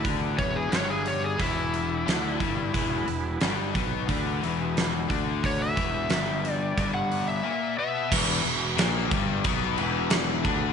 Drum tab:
CC |--------|--------|--------|xxxxxxxx|
HH |oooooooo|oooooooo|oooooo--|--------|
SD |--o---o-|--o---o-|--o-----|--o---o-|
BD |oo--o--o|o--oo--o|oo--o---|o--oo--o|